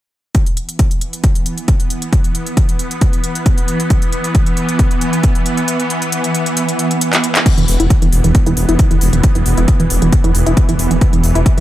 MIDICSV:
0, 0, Header, 1, 5, 480
1, 0, Start_track
1, 0, Tempo, 444444
1, 376, Time_signature, 4, 2, 24, 8
1, 12530, End_track
2, 0, Start_track
2, 0, Title_t, "Synth drone"
2, 0, Program_c, 0, 95
2, 377, Note_on_c, 0, 52, 75
2, 377, Note_on_c, 0, 59, 77
2, 8043, Note_off_c, 0, 59, 0
2, 8044, Note_off_c, 0, 52, 0
2, 8056, Note_on_c, 0, 52, 76
2, 8056, Note_on_c, 0, 59, 77
2, 12530, Note_off_c, 0, 52, 0
2, 12530, Note_off_c, 0, 59, 0
2, 12530, End_track
3, 0, Start_track
3, 0, Title_t, "Synth arpeggio sound"
3, 0, Program_c, 1, 84
3, 8182, Note_on_c, 1, 52, 78
3, 8256, Note_off_c, 1, 52, 0
3, 8423, Note_on_c, 1, 64, 74
3, 8472, Note_off_c, 1, 64, 0
3, 8662, Note_on_c, 1, 52, 76
3, 8712, Note_off_c, 1, 52, 0
3, 8902, Note_on_c, 1, 52, 76
3, 8976, Note_off_c, 1, 52, 0
3, 9142, Note_on_c, 1, 52, 98
3, 9216, Note_off_c, 1, 52, 0
3, 9382, Note_on_c, 1, 64, 76
3, 9431, Note_off_c, 1, 64, 0
3, 9623, Note_on_c, 1, 52, 76
3, 9672, Note_off_c, 1, 52, 0
3, 9862, Note_on_c, 1, 52, 74
3, 9911, Note_off_c, 1, 52, 0
3, 10101, Note_on_c, 1, 52, 77
3, 10175, Note_off_c, 1, 52, 0
3, 10342, Note_on_c, 1, 64, 76
3, 10391, Note_off_c, 1, 64, 0
3, 10582, Note_on_c, 1, 52, 71
3, 10631, Note_off_c, 1, 52, 0
3, 10823, Note_on_c, 1, 52, 76
3, 10896, Note_off_c, 1, 52, 0
3, 11061, Note_on_c, 1, 52, 104
3, 11135, Note_off_c, 1, 52, 0
3, 11302, Note_on_c, 1, 64, 76
3, 11351, Note_off_c, 1, 64, 0
3, 11542, Note_on_c, 1, 52, 75
3, 11591, Note_off_c, 1, 52, 0
3, 11781, Note_on_c, 1, 52, 74
3, 11831, Note_off_c, 1, 52, 0
3, 12022, Note_on_c, 1, 52, 76
3, 12096, Note_off_c, 1, 52, 0
3, 12261, Note_on_c, 1, 64, 77
3, 12311, Note_off_c, 1, 64, 0
3, 12530, End_track
4, 0, Start_track
4, 0, Title_t, "Detuned saw bass"
4, 0, Program_c, 2, 39
4, 8181, Note_on_c, 2, 28, 86
4, 8262, Note_off_c, 2, 28, 0
4, 8295, Note_on_c, 2, 28, 100
4, 8385, Note_off_c, 2, 28, 0
4, 8422, Note_on_c, 2, 28, 91
4, 8503, Note_off_c, 2, 28, 0
4, 8662, Note_on_c, 2, 28, 90
4, 8743, Note_off_c, 2, 28, 0
4, 8775, Note_on_c, 2, 28, 98
4, 8866, Note_off_c, 2, 28, 0
4, 8902, Note_on_c, 2, 28, 89
4, 8983, Note_off_c, 2, 28, 0
4, 9142, Note_on_c, 2, 28, 89
4, 9223, Note_off_c, 2, 28, 0
4, 9255, Note_on_c, 2, 28, 97
4, 9346, Note_off_c, 2, 28, 0
4, 9382, Note_on_c, 2, 28, 93
4, 9463, Note_off_c, 2, 28, 0
4, 9623, Note_on_c, 2, 29, 86
4, 9703, Note_off_c, 2, 29, 0
4, 9736, Note_on_c, 2, 28, 97
4, 9826, Note_off_c, 2, 28, 0
4, 9861, Note_on_c, 2, 28, 89
4, 9943, Note_off_c, 2, 28, 0
4, 10101, Note_on_c, 2, 28, 83
4, 10183, Note_off_c, 2, 28, 0
4, 10215, Note_on_c, 2, 28, 95
4, 10306, Note_off_c, 2, 28, 0
4, 10341, Note_on_c, 2, 28, 96
4, 10423, Note_off_c, 2, 28, 0
4, 10582, Note_on_c, 2, 28, 88
4, 10663, Note_off_c, 2, 28, 0
4, 10695, Note_on_c, 2, 28, 101
4, 10786, Note_off_c, 2, 28, 0
4, 10822, Note_on_c, 2, 28, 89
4, 10903, Note_off_c, 2, 28, 0
4, 11062, Note_on_c, 2, 28, 86
4, 11143, Note_off_c, 2, 28, 0
4, 11176, Note_on_c, 2, 28, 97
4, 11266, Note_off_c, 2, 28, 0
4, 11302, Note_on_c, 2, 28, 91
4, 11383, Note_off_c, 2, 28, 0
4, 11542, Note_on_c, 2, 29, 88
4, 11623, Note_off_c, 2, 29, 0
4, 11655, Note_on_c, 2, 28, 97
4, 11746, Note_off_c, 2, 28, 0
4, 11781, Note_on_c, 2, 28, 89
4, 11863, Note_off_c, 2, 28, 0
4, 12021, Note_on_c, 2, 28, 86
4, 12103, Note_off_c, 2, 28, 0
4, 12136, Note_on_c, 2, 28, 101
4, 12226, Note_off_c, 2, 28, 0
4, 12262, Note_on_c, 2, 28, 89
4, 12343, Note_off_c, 2, 28, 0
4, 12530, End_track
5, 0, Start_track
5, 0, Title_t, "Drums"
5, 374, Note_on_c, 9, 42, 92
5, 375, Note_on_c, 9, 36, 122
5, 482, Note_off_c, 9, 42, 0
5, 483, Note_off_c, 9, 36, 0
5, 502, Note_on_c, 9, 42, 53
5, 610, Note_off_c, 9, 42, 0
5, 615, Note_on_c, 9, 42, 63
5, 723, Note_off_c, 9, 42, 0
5, 741, Note_on_c, 9, 42, 54
5, 849, Note_off_c, 9, 42, 0
5, 855, Note_on_c, 9, 42, 92
5, 856, Note_on_c, 9, 36, 116
5, 963, Note_off_c, 9, 42, 0
5, 964, Note_off_c, 9, 36, 0
5, 982, Note_on_c, 9, 42, 54
5, 1090, Note_off_c, 9, 42, 0
5, 1095, Note_on_c, 9, 42, 65
5, 1203, Note_off_c, 9, 42, 0
5, 1222, Note_on_c, 9, 42, 54
5, 1330, Note_off_c, 9, 42, 0
5, 1335, Note_on_c, 9, 42, 97
5, 1336, Note_on_c, 9, 36, 112
5, 1443, Note_off_c, 9, 42, 0
5, 1444, Note_off_c, 9, 36, 0
5, 1462, Note_on_c, 9, 42, 56
5, 1570, Note_off_c, 9, 42, 0
5, 1575, Note_on_c, 9, 42, 67
5, 1683, Note_off_c, 9, 42, 0
5, 1702, Note_on_c, 9, 42, 50
5, 1810, Note_off_c, 9, 42, 0
5, 1815, Note_on_c, 9, 42, 90
5, 1816, Note_on_c, 9, 36, 109
5, 1923, Note_off_c, 9, 42, 0
5, 1924, Note_off_c, 9, 36, 0
5, 1941, Note_on_c, 9, 42, 54
5, 2049, Note_off_c, 9, 42, 0
5, 2055, Note_on_c, 9, 42, 65
5, 2163, Note_off_c, 9, 42, 0
5, 2182, Note_on_c, 9, 42, 53
5, 2290, Note_off_c, 9, 42, 0
5, 2296, Note_on_c, 9, 36, 122
5, 2296, Note_on_c, 9, 42, 92
5, 2404, Note_off_c, 9, 36, 0
5, 2404, Note_off_c, 9, 42, 0
5, 2422, Note_on_c, 9, 42, 55
5, 2530, Note_off_c, 9, 42, 0
5, 2536, Note_on_c, 9, 42, 65
5, 2644, Note_off_c, 9, 42, 0
5, 2662, Note_on_c, 9, 42, 54
5, 2770, Note_off_c, 9, 42, 0
5, 2776, Note_on_c, 9, 36, 120
5, 2776, Note_on_c, 9, 42, 94
5, 2884, Note_off_c, 9, 36, 0
5, 2884, Note_off_c, 9, 42, 0
5, 2903, Note_on_c, 9, 42, 54
5, 3011, Note_off_c, 9, 42, 0
5, 3016, Note_on_c, 9, 42, 68
5, 3124, Note_off_c, 9, 42, 0
5, 3142, Note_on_c, 9, 42, 55
5, 3250, Note_off_c, 9, 42, 0
5, 3255, Note_on_c, 9, 42, 93
5, 3256, Note_on_c, 9, 36, 111
5, 3363, Note_off_c, 9, 42, 0
5, 3364, Note_off_c, 9, 36, 0
5, 3382, Note_on_c, 9, 42, 54
5, 3490, Note_off_c, 9, 42, 0
5, 3495, Note_on_c, 9, 42, 68
5, 3603, Note_off_c, 9, 42, 0
5, 3622, Note_on_c, 9, 42, 55
5, 3730, Note_off_c, 9, 42, 0
5, 3735, Note_on_c, 9, 42, 93
5, 3736, Note_on_c, 9, 36, 120
5, 3843, Note_off_c, 9, 42, 0
5, 3844, Note_off_c, 9, 36, 0
5, 3862, Note_on_c, 9, 42, 56
5, 3970, Note_off_c, 9, 42, 0
5, 3975, Note_on_c, 9, 42, 66
5, 4083, Note_off_c, 9, 42, 0
5, 4101, Note_on_c, 9, 42, 53
5, 4209, Note_off_c, 9, 42, 0
5, 4214, Note_on_c, 9, 42, 90
5, 4216, Note_on_c, 9, 36, 123
5, 4322, Note_off_c, 9, 42, 0
5, 4324, Note_off_c, 9, 36, 0
5, 4341, Note_on_c, 9, 42, 52
5, 4449, Note_off_c, 9, 42, 0
5, 4455, Note_on_c, 9, 42, 62
5, 4563, Note_off_c, 9, 42, 0
5, 4581, Note_on_c, 9, 42, 53
5, 4689, Note_off_c, 9, 42, 0
5, 4695, Note_on_c, 9, 42, 88
5, 4696, Note_on_c, 9, 36, 121
5, 4803, Note_off_c, 9, 42, 0
5, 4804, Note_off_c, 9, 36, 0
5, 4821, Note_on_c, 9, 42, 51
5, 4929, Note_off_c, 9, 42, 0
5, 4935, Note_on_c, 9, 42, 63
5, 5043, Note_off_c, 9, 42, 0
5, 5061, Note_on_c, 9, 42, 55
5, 5169, Note_off_c, 9, 42, 0
5, 5175, Note_on_c, 9, 36, 117
5, 5175, Note_on_c, 9, 42, 93
5, 5283, Note_off_c, 9, 36, 0
5, 5283, Note_off_c, 9, 42, 0
5, 5302, Note_on_c, 9, 42, 53
5, 5410, Note_off_c, 9, 42, 0
5, 5414, Note_on_c, 9, 42, 67
5, 5522, Note_off_c, 9, 42, 0
5, 5540, Note_on_c, 9, 42, 54
5, 5648, Note_off_c, 9, 42, 0
5, 5654, Note_on_c, 9, 42, 94
5, 5655, Note_on_c, 9, 36, 126
5, 5762, Note_off_c, 9, 42, 0
5, 5763, Note_off_c, 9, 36, 0
5, 5780, Note_on_c, 9, 42, 53
5, 5888, Note_off_c, 9, 42, 0
5, 5894, Note_on_c, 9, 42, 66
5, 6002, Note_off_c, 9, 42, 0
5, 6020, Note_on_c, 9, 42, 51
5, 6128, Note_off_c, 9, 42, 0
5, 6134, Note_on_c, 9, 42, 87
5, 6242, Note_off_c, 9, 42, 0
5, 6260, Note_on_c, 9, 42, 52
5, 6368, Note_off_c, 9, 42, 0
5, 6374, Note_on_c, 9, 42, 63
5, 6482, Note_off_c, 9, 42, 0
5, 6500, Note_on_c, 9, 42, 53
5, 6608, Note_off_c, 9, 42, 0
5, 6613, Note_on_c, 9, 42, 85
5, 6721, Note_off_c, 9, 42, 0
5, 6741, Note_on_c, 9, 42, 52
5, 6849, Note_off_c, 9, 42, 0
5, 6853, Note_on_c, 9, 42, 65
5, 6961, Note_off_c, 9, 42, 0
5, 6980, Note_on_c, 9, 42, 52
5, 7088, Note_off_c, 9, 42, 0
5, 7093, Note_on_c, 9, 42, 93
5, 7201, Note_off_c, 9, 42, 0
5, 7220, Note_on_c, 9, 42, 53
5, 7328, Note_off_c, 9, 42, 0
5, 7334, Note_on_c, 9, 42, 64
5, 7442, Note_off_c, 9, 42, 0
5, 7461, Note_on_c, 9, 42, 52
5, 7569, Note_off_c, 9, 42, 0
5, 7575, Note_on_c, 9, 42, 92
5, 7683, Note_off_c, 9, 42, 0
5, 7702, Note_on_c, 9, 39, 77
5, 7702, Note_on_c, 9, 42, 52
5, 7810, Note_off_c, 9, 39, 0
5, 7810, Note_off_c, 9, 42, 0
5, 7816, Note_on_c, 9, 42, 65
5, 7924, Note_off_c, 9, 42, 0
5, 7943, Note_on_c, 9, 39, 93
5, 7943, Note_on_c, 9, 42, 52
5, 8051, Note_off_c, 9, 39, 0
5, 8051, Note_off_c, 9, 42, 0
5, 8055, Note_on_c, 9, 36, 123
5, 8056, Note_on_c, 9, 42, 92
5, 8056, Note_on_c, 9, 49, 96
5, 8163, Note_off_c, 9, 36, 0
5, 8164, Note_off_c, 9, 42, 0
5, 8164, Note_off_c, 9, 49, 0
5, 8183, Note_on_c, 9, 42, 55
5, 8291, Note_off_c, 9, 42, 0
5, 8295, Note_on_c, 9, 46, 105
5, 8403, Note_off_c, 9, 46, 0
5, 8423, Note_on_c, 9, 42, 55
5, 8531, Note_off_c, 9, 42, 0
5, 8535, Note_on_c, 9, 36, 117
5, 8536, Note_on_c, 9, 42, 98
5, 8643, Note_off_c, 9, 36, 0
5, 8644, Note_off_c, 9, 42, 0
5, 8662, Note_on_c, 9, 42, 55
5, 8770, Note_off_c, 9, 42, 0
5, 8775, Note_on_c, 9, 46, 106
5, 8883, Note_off_c, 9, 46, 0
5, 8901, Note_on_c, 9, 42, 57
5, 9009, Note_off_c, 9, 42, 0
5, 9015, Note_on_c, 9, 36, 112
5, 9015, Note_on_c, 9, 42, 96
5, 9123, Note_off_c, 9, 36, 0
5, 9123, Note_off_c, 9, 42, 0
5, 9141, Note_on_c, 9, 42, 55
5, 9249, Note_off_c, 9, 42, 0
5, 9254, Note_on_c, 9, 46, 102
5, 9362, Note_off_c, 9, 46, 0
5, 9382, Note_on_c, 9, 42, 52
5, 9490, Note_off_c, 9, 42, 0
5, 9494, Note_on_c, 9, 42, 94
5, 9495, Note_on_c, 9, 36, 118
5, 9602, Note_off_c, 9, 42, 0
5, 9603, Note_off_c, 9, 36, 0
5, 9621, Note_on_c, 9, 42, 55
5, 9729, Note_off_c, 9, 42, 0
5, 9733, Note_on_c, 9, 46, 103
5, 9841, Note_off_c, 9, 46, 0
5, 9861, Note_on_c, 9, 42, 54
5, 9969, Note_off_c, 9, 42, 0
5, 9974, Note_on_c, 9, 42, 97
5, 9975, Note_on_c, 9, 36, 126
5, 10082, Note_off_c, 9, 42, 0
5, 10083, Note_off_c, 9, 36, 0
5, 10100, Note_on_c, 9, 42, 55
5, 10208, Note_off_c, 9, 42, 0
5, 10214, Note_on_c, 9, 46, 103
5, 10322, Note_off_c, 9, 46, 0
5, 10341, Note_on_c, 9, 42, 56
5, 10449, Note_off_c, 9, 42, 0
5, 10454, Note_on_c, 9, 42, 92
5, 10455, Note_on_c, 9, 36, 126
5, 10562, Note_off_c, 9, 42, 0
5, 10563, Note_off_c, 9, 36, 0
5, 10581, Note_on_c, 9, 42, 54
5, 10689, Note_off_c, 9, 42, 0
5, 10694, Note_on_c, 9, 46, 112
5, 10802, Note_off_c, 9, 46, 0
5, 10822, Note_on_c, 9, 42, 54
5, 10930, Note_off_c, 9, 42, 0
5, 10935, Note_on_c, 9, 36, 114
5, 10935, Note_on_c, 9, 42, 100
5, 11043, Note_off_c, 9, 36, 0
5, 11043, Note_off_c, 9, 42, 0
5, 11061, Note_on_c, 9, 42, 56
5, 11169, Note_off_c, 9, 42, 0
5, 11175, Note_on_c, 9, 46, 108
5, 11283, Note_off_c, 9, 46, 0
5, 11302, Note_on_c, 9, 42, 56
5, 11410, Note_off_c, 9, 42, 0
5, 11415, Note_on_c, 9, 36, 123
5, 11416, Note_on_c, 9, 42, 93
5, 11523, Note_off_c, 9, 36, 0
5, 11524, Note_off_c, 9, 42, 0
5, 11542, Note_on_c, 9, 42, 58
5, 11650, Note_off_c, 9, 42, 0
5, 11655, Note_on_c, 9, 46, 107
5, 11763, Note_off_c, 9, 46, 0
5, 11782, Note_on_c, 9, 42, 53
5, 11890, Note_off_c, 9, 42, 0
5, 11895, Note_on_c, 9, 36, 127
5, 11895, Note_on_c, 9, 42, 89
5, 12003, Note_off_c, 9, 36, 0
5, 12003, Note_off_c, 9, 42, 0
5, 12021, Note_on_c, 9, 42, 54
5, 12129, Note_off_c, 9, 42, 0
5, 12135, Note_on_c, 9, 46, 106
5, 12243, Note_off_c, 9, 46, 0
5, 12262, Note_on_c, 9, 42, 53
5, 12370, Note_off_c, 9, 42, 0
5, 12375, Note_on_c, 9, 36, 127
5, 12376, Note_on_c, 9, 42, 96
5, 12483, Note_off_c, 9, 36, 0
5, 12484, Note_off_c, 9, 42, 0
5, 12530, End_track
0, 0, End_of_file